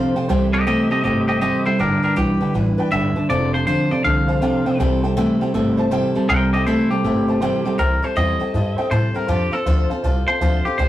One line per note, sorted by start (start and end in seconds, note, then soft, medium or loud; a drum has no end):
0.00 0.13 F2 medium
0.00 0.14 C3 medium
0.00 0.16 D3 medium
0.00 0.16 F3 medium
0.00 0.16 C4 loud
0.00 0.16 F4 medium
0.00 0.15 A4 loud
0.00 0.15 C5 loud
0.14 0.28 F2 medium
0.14 0.28 C3 medium
0.14 0.29 C4 medium
0.14 0.30 F4 medium
0.14 0.29 A4 medium
0.14 0.23 C5 medium
0.14 0.29 C5 medium
0.14 0.23 F5 medium
0.14 0.24 G5 medium
0.14 muted upright bass stroke medium
0.28 0.72 C2 medium
0.28 0.53 C3 medium
0.28 0.64 C3 medium
0.28 0.53 E3 medium
0.28 0.54 G3 medium
0.28 0.64 G3 loud
0.28 0.53 C4 loud
0.28 0.52 E4 medium
0.28 0.52 A4 medium
0.28 0.43 C5 loud
0.28 0.44 E5 loud
0.28 0.44 G5 loud
0.52 0.66 G3 medium
0.52 0.66 C4 soft
0.52 0.66 E4 medium
0.52 0.65 G4 medium
0.52 0.66 A4 medium
0.52 0.61 C5 medium
0.52 0.66 D#5 medium
0.52 0.61 E5 medium
0.52 0.62 A5 medium
0.65 0.91 C3 medium
0.65 0.89 C3 medium
0.65 0.91 E3 medium
0.65 0.91 G3 medium
0.65 0.89 A3 medium
0.65 0.91 C4 medium
0.65 0.90 E4 medium
0.65 0.89 G4 medium
0.65 0.89 A4 medium
0.65 0.80 C5 medium
0.65 0.90 D#5 loud
0.65 0.81 E5 medium
0.65 0.81 G5 medium
0.90 1.03 C3 medium
0.90 1.03 G3 medium
0.90 1.02 G3 soft
0.90 1.03 C4 medium
0.90 1.04 E4 soft
0.90 1.03 G4 medium
0.90 1.04 A4 medium
0.90 0.98 C5 medium
0.90 1.04 D#5 medium
0.90 0.99 E5 medium
0.90 0.99 A5 medium
0.90 muted upright bass stroke medium
1.03 1.48 G1 medium
1.03 1.39 C3 medium
1.03 1.28 G3 medium
1.03 1.39 A3 medium
1.03 1.28 C4 medium
1.03 1.27 E4 medium
1.03 1.27 G4 medium
1.03 1.27 A4 medium
1.03 1.18 C5 medium
1.03 1.28 D#5 medium
1.03 1.18 E5 medium
1.03 1.19 G5 medium
1.27 1.41 G3 soft
1.27 1.41 C4 soft
1.27 1.41 E4 soft
1.27 1.40 G4 medium
1.27 1.42 A4 medium
1.27 1.36 C5 medium
1.27 1.41 D#5 medium
1.27 1.36 E5 medium
1.27 1.37 G5 loud
1.40 1.66 C3 medium
1.40 1.63 C3 medium
1.40 1.66 E3 medium
1.40 1.64 G3 loud
1.40 1.66 G3 medium
1.40 1.65 C4 medium
1.40 1.65 E4 medium
1.40 1.64 G4 medium
1.40 1.64 A4 medium
1.40 1.55 C5 loud
1.40 1.65 D#5 medium
1.40 1.56 E5 medium
1.40 1.56 G5 loud
1.65 1.78 C3 medium
1.65 1.78 G3 medium
1.65 1.78 G3 soft
1.65 1.79 C4 soft
1.65 1.78 E4 medium
1.65 1.79 A4 medium
1.65 1.73 C5 medium
1.65 1.79 C5 medium
1.65 1.74 E5 medium
1.65 1.74 G5 medium
1.65 muted upright bass stroke medium
1.78 1.96 G1 loud
1.78 2.14 G2 medium
1.78 2.14 D3 medium
1.78 2.03 G3 medium
1.78 2.03 D4 medium
1.78 2.02 D4 medium
1.78 2.02 E4 medium
1.78 2.03 A#4 medium
1.78 1.93 B4 medium
1.78 2.01 B4 medium
1.78 1.94 D5 medium
1.78 1.94 G5 loud
2.02 2.16 D4 medium
2.02 2.15 D4 soft
2.02 2.16 E4 medium
2.02 2.16 A#4 medium
2.02 2.11 B4 medium
2.02 2.16 B4 medium
2.02 2.11 D5 medium
2.02 2.12 G5 medium
2.02 muted upright bass stroke medium
2.16 2.37 B1 medium
2.16 2.38 G2 medium
2.16 2.39 E3 medium
2.16 2.41 G3 medium
2.16 2.41 D4 medium
2.16 2.40 E4 medium
2.16 2.53 G4 medium
2.16 2.31 B4 medium
2.16 2.39 B4 medium
2.16 2.31 D5 medium
2.16 2.32 G5 medium
2.40 2.53 G2 medium
2.40 2.53 D3 medium
2.40 2.54 D4 soft
2.40 2.54 E4 soft
2.40 2.48 B4 medium
2.40 2.54 B4 medium
2.40 2.49 D5 medium
2.40 2.49 G5 medium
2.53 2.75 A1 medium
2.53 2.89 G2 medium
2.53 2.90 E3 medium
2.53 2.78 G3 medium
2.53 2.79 D4 medium
2.53 2.78 E4 medium
2.53 2.68 B4 medium
2.53 2.77 B4 medium
2.53 2.69 D5 medium
2.53 2.69 G5 medium
2.78 2.91 D4 soft
2.78 2.91 E4 medium
2.78 2.86 B4 loud
2.78 2.92 B4 medium
2.78 2.87 D5 loud
2.78 2.87 G5 loud
2.91 3.13 G1 loud
2.91 3.14 G2 medium
2.91 3.14 D3 medium
2.91 3.16 G3 medium
2.91 3.16 D4 medium
2.91 3.16 E4 medium
2.91 3.06 B4 loud
2.91 3.15 B4 medium
2.91 3.07 D5 medium
2.91 3.28 E5 medium
2.91 3.07 G5 loud
3.15 3.28 G2 medium
3.15 3.28 D3 medium
3.15 3.29 D4 soft
3.15 3.30 E4 soft
3.15 3.24 B4 medium
3.15 3.29 B4 medium
3.15 3.24 D5 medium
3.15 3.25 A5 medium
3.15 muted upright bass stroke medium
3.28 3.73 F1 loud
3.28 3.64 F2 medium
3.28 3.64 C3 loud
3.28 3.54 F3 medium
3.28 3.54 A3 medium
3.28 3.54 D4 medium
3.28 3.54 A4 medium
3.28 3.43 C5 medium
3.28 3.53 C5 medium
3.28 3.53 D5 loud
3.28 3.44 F5 medium
3.28 3.44 A5 loud
3.53 3.66 D4 medium
3.53 3.66 A4 soft
3.53 3.61 C5 medium
3.53 3.67 C5 medium
3.53 3.66 C5 medium
3.53 3.62 F5 medium
3.53 3.62 A5 medium
3.66 3.88 F2 medium
3.66 3.89 D3 medium
3.66 3.91 F3 medium
3.66 3.91 A3 medium
3.66 3.91 D4 medium
3.66 3.91 A4 medium
3.66 3.81 C5 medium
3.66 3.91 C5 medium
3.66 3.90 C5 loud
3.66 3.81 F5 medium
3.66 3.82 C6 medium
3.90 4.03 F2 medium
3.90 4.03 C3 medium
3.90 4.04 D4 soft
3.90 4.05 A4 medium
3.90 3.99 C5 medium
3.90 4.05 C5 medium
3.90 4.04 D5 medium
3.90 3.99 F5 medium
3.90 4.00 A5 medium
3.90 muted upright bass stroke medium
4.03 4.48 C2 medium
4.03 4.39 F2 medium
4.03 4.39 D3 loud
4.03 4.29 A3 medium
4.03 4.29 D4 medium
4.03 4.28 A4 medium
4.03 4.18 C5 medium
4.03 4.27 C5 medium
4.03 4.77 F5 loud
4.03 4.19 A5 medium
4.27 4.41 D4 soft
4.27 4.42 A4 soft
4.27 4.36 C5 loud
4.27 4.42 C5 medium
4.27 4.36 F5 medium
4.27 4.37 A5 loud
4.41 4.63 F2 medium
4.41 4.64 C3 loud
4.41 4.66 F3 medium
4.41 4.66 A3 medium
4.41 4.66 D4 medium
4.41 4.66 A4 medium
4.41 4.56 C5 loud
4.41 4.65 C5 medium
4.41 4.56 F5 loud
4.41 4.57 G5 loud
4.65 4.78 F2 medium
4.65 4.78 C3 medium
4.65 4.80 D4 soft
4.65 4.80 A4 medium
4.65 4.74 C5 loud
4.65 4.79 C5 medium
4.65 4.74 F5 medium
4.65 4.74 G5 loud
4.65 muted upright bass stroke medium
4.78 5.23 C2 loud
4.78 5.14 C3 medium
4.78 5.04 C3 medium
4.78 5.04 E3 medium
4.78 5.15 G3 loud
4.78 5.04 G3 medium
4.78 5.04 C4 medium
4.78 5.03 E4 loud
4.78 5.03 A4 loud
4.78 4.93 C5 loud
4.78 4.94 E5 loud
4.78 4.94 G5 loud
5.01 5.16 C4 medium
5.01 5.16 E4 medium
5.01 5.17 A4 medium
5.01 5.11 C5 medium
5.01 5.11 E5 medium
5.01 5.12 G5 loud
5.06 5.16 G3 soft
5.16 5.41 C3 medium
5.16 5.39 C3 medium
5.16 5.41 E3 medium
5.16 5.41 G3 medium
5.16 5.39 A3 medium
5.16 5.41 C4 loud
5.16 5.41 E4 loud
5.16 5.40 A4 medium
5.16 5.31 C5 medium
5.16 5.31 E5 medium
5.16 5.32 G5 loud
5.40 5.53 C3 medium
5.40 5.53 G3 medium
5.40 5.54 C4 medium
5.40 5.54 E4 medium
5.40 5.54 A4 medium
5.40 5.48 C5 medium
5.40 5.49 E5 medium
5.40 5.49 G5 loud
5.40 muted upright bass stroke medium
5.53 5.97 G1 medium
5.53 5.89 C3 medium
5.53 5.78 G3 medium
5.53 5.89 A3 medium
5.53 5.78 C4 medium
5.53 5.77 E4 medium
5.53 5.76 A4 medium
5.53 5.68 C5 medium
5.53 5.69 E5 medium
5.53 5.69 A5 loud
5.77 5.90 G3 soft
5.77 5.91 C4 medium
5.77 5.91 E4 medium
5.77 5.91 A4 medium
5.77 5.86 C5 loud
5.77 5.86 E5 loud
5.77 5.87 A5 loud
5.91 6.16 C3 medium
5.91 6.13 C3 medium
5.91 6.16 E3 medium
5.91 6.16 G3 medium
5.91 6.14 G3 medium
5.91 6.15 C4 medium
5.91 6.14 E4 medium
5.91 6.14 A4 loud
5.91 6.06 C5 loud
5.91 6.06 E5 loud
5.91 6.07 G5 loud
6.14 6.28 C3 medium
6.14 6.28 G3 medium
6.14 6.29 C4 medium
6.14 6.29 E4 medium
6.14 6.29 A4 medium
6.14 6.23 C5 medium
6.14 6.24 E5 medium
6.14 6.24 A5 loud
6.14 muted upright bass stroke medium
6.28 6.72 C2 loud
6.28 6.53 C3 medium
6.28 6.64 C3 medium
6.28 6.53 E3 medium
6.28 6.53 G3 medium
6.28 6.64 G3 medium
6.28 6.53 C4 medium
6.28 6.53 E4 medium
6.28 6.52 A4 medium
6.28 6.52 A#4 medium
6.28 6.43 C5 medium
6.28 6.44 E5 medium
6.28 6.53 G5 loud
6.28 6.44 G5 loud
6.53 6.66 G3 soft
6.53 6.66 C4 medium
6.53 6.67 E4 medium
6.53 6.66 G4 medium
6.53 6.67 A4 medium
6.53 6.61 C5 medium
6.53 6.66 D#5 medium
6.53 6.61 E5 medium
6.53 6.62 G5 medium
6.66 6.91 C3 medium
6.66 6.88 C3 medium
6.66 6.91 E3 medium
6.66 6.91 G3 medium
6.66 6.89 A3 medium
6.66 6.91 C4 medium
6.66 6.89 E4 medium
6.66 6.90 E4 medium
6.66 6.90 A4 medium
6.66 6.81 C5 medium
6.66 6.90 C5 medium
6.66 6.81 E5 medium
6.66 6.82 A5 medium
6.90 7.03 C3 medium
6.90 7.03 G3 medium
6.90 7.03 G3 soft
6.90 7.04 C4 soft
6.90 7.04 E4 medium
6.90 7.76 G4 medium
6.90 7.04 A4 medium
6.90 6.99 C5 medium
6.90 6.99 E5 medium
6.90 7.00 A5 medium
6.90 muted upright bass stroke medium
7.04 7.47 G1 medium
7.04 7.39 C3 medium
7.04 7.28 G3 medium
7.04 7.39 A3 medium
7.04 7.29 C4 medium
7.04 7.28 E4 medium
7.04 7.27 A4 medium
7.04 7.18 C5 medium
7.04 7.19 E5 medium
7.04 7.19 A5 medium
7.28 7.41 G3 soft
7.28 7.41 C4 soft
7.28 7.41 E4 soft
7.28 7.42 A4 soft
7.28 7.36 C5 loud
7.28 7.36 E5 medium
7.28 7.37 A5 loud
7.41 7.63 C3 medium
7.41 7.66 C3 medium
7.41 7.66 E3 medium
7.41 7.66 G3 medium
7.41 7.64 G3 loud
7.41 7.66 C4 medium
7.41 7.65 E4 loud
7.41 7.64 A4 loud
7.41 7.56 C5 loud
7.41 7.56 E5 loud
7.41 7.57 G5 loud
7.65 7.77 C3 medium
7.65 7.78 G3 medium
7.65 7.78 G3 soft
7.65 7.78 C4 medium
7.65 7.78 E4 medium
7.65 7.78 A4 medium
7.65 7.73 C5 medium
7.65 7.74 E5 medium
7.65 7.74 G5 loud
7.65 muted upright bass stroke medium
7.78 8.02 C2 medium
7.78 8.03 C3 medium
7.78 8.03 E3 medium
7.78 8.03 G3 medium
7.78 8.03 C4 medium
7.78 8.02 E4 medium
7.78 8.01 A4 medium
7.78 8.04 A#4 medium
7.78 7.93 C5 medium
7.78 7.93 E5 medium
7.78 7.94 G5 loud
8.02 8.15 G3 soft
8.02 8.16 C4 medium
8.02 8.16 E4 medium
8.02 8.16 A4 medium
8.02 8.11 C5 medium
8.02 8.17 C5 medium
8.02 8.11 E5 medium
8.02 8.12 A5 medium
8.15 8.40 E2 loud
8.15 8.40 C3 medium
8.15 8.40 E3 medium
8.15 8.40 G3 medium
8.15 8.40 C4 medium
8.15 8.39 E4 medium
8.15 8.38 A4 medium
8.15 8.30 C5 medium
8.15 8.89 D#5 loud
8.15 8.31 E5 medium
8.15 8.31 G5 medium
8.39 8.53 G3 soft
8.39 8.54 C4 soft
8.39 8.54 E4 soft
8.39 8.53 A4 medium
8.39 8.48 C5 medium
8.39 8.48 E5 medium
8.39 8.49 G5 medium
8.39 muted upright bass stroke medium
8.53 8.77 G2 medium
8.53 8.78 G3 medium
8.53 8.77 C4 medium
8.53 8.77 E4 medium
8.53 8.77 A4 medium
8.53 8.68 C5 medium
8.53 8.68 E5 medium
8.53 8.69 A5 medium
8.76 8.90 G3 soft
8.76 8.91 C4 medium
8.76 8.91 E4 medium
8.76 8.91 A4 medium
8.76 8.85 C5 loud
8.76 8.86 E5 loud
8.76 8.86 G5 loud
8.76 muted upright bass stroke medium
8.90 9.14 A2 medium
8.90 9.15 C3 medium
8.90 9.15 E3 medium
8.90 9.15 G3 medium
8.90 9.14 C4 medium
8.90 9.14 E4 medium
8.90 9.13 A4 medium
8.90 9.05 C5 loud
8.90 9.16 C5 medium
8.90 9.06 E5 loud
8.90 9.06 A5 loud
9.14 9.28 G3 soft
9.14 9.28 C4 soft
9.14 9.29 E4 medium
9.14 9.28 A4 medium
9.14 9.29 A#4 medium
9.14 9.23 C5 medium
9.14 9.23 E5 medium
9.14 9.24 G5 medium
9.14 muted upright bass stroke medium
9.27 9.52 F2 medium
9.27 9.53 D3 medium
9.27 9.53 F3 medium
9.27 9.53 C4 medium
9.27 9.52 F4 medium
9.27 9.53 G4 medium
9.27 9.51 A4 medium
9.27 9.42 C5 medium
9.27 9.52 C5 medium
9.27 9.43 F5 medium
9.27 9.43 A5 loud
9.51 9.66 C4 soft
9.51 9.66 F4 medium
9.51 9.66 A4 medium
9.51 9.89 A4 loud
9.51 9.60 C5 medium
9.51 9.66 C5 medium
9.51 9.60 F5 medium
9.51 9.61 A5 medium
9.65 9.89 D2 loud
9.65 9.90 D3 medium
9.65 9.90 F3 medium
9.65 9.91 C4 medium
9.65 9.90 F4 medium
9.65 9.89 A4 loud
9.65 9.80 C5 medium
9.65 9.90 C5 loud
9.65 9.80 F5 medium
9.65 9.81 C6 medium
9.89 10.03 C4 soft
9.89 10.03 F4 soft
9.89 10.04 A4 medium
9.89 9.98 C5 medium
9.89 10.04 C5 medium
9.89 9.98 F5 medium
9.89 9.98 A5 medium
9.89 muted upright bass stroke medium
10.03 10.27 C2 medium
10.03 10.28 C4 medium
10.03 10.28 F4 medium
10.03 10.27 A4 medium
10.03 10.18 C5 medium
10.03 10.27 C5 medium
10.03 10.18 F5 medium
10.03 10.19 A5 medium
10.26 10.41 C4 soft
10.26 10.41 F4 soft
10.26 10.41 A4 medium
10.26 10.35 C5 loud
10.26 10.64 C5 medium
10.26 10.41 C5 soft
10.26 10.36 F5 medium
10.26 10.36 A5 loud
10.40 10.64 D2 loud
10.40 10.65 D3 medium
10.40 10.65 F3 medium
10.40 10.66 C4 medium
10.40 10.65 F4 medium
10.40 10.64 A4 loud
10.40 10.55 C5 loud
10.40 10.65 C5 medium
10.40 10.55 F5 medium
10.40 10.56 A5 loud
10.64 10.77 C4 soft
10.64 10.79 F4 soft
10.64 10.78 G4 medium
10.64 10.79 A4 medium
10.64 10.73 C5 medium
10.64 10.79 C5 medium
10.64 10.73 F5 medium
10.64 10.74 C6 medium
10.64 muted upright bass stroke medium
10.78 10.89 C2 medium
10.78 10.89 C4 medium
10.78 10.89 E4 medium
10.78 10.89 G4 medium
10.78 10.89 A4 medium
10.78 10.89 C5 loud
10.78 10.89 E5 medium
10.78 10.89 G5 loud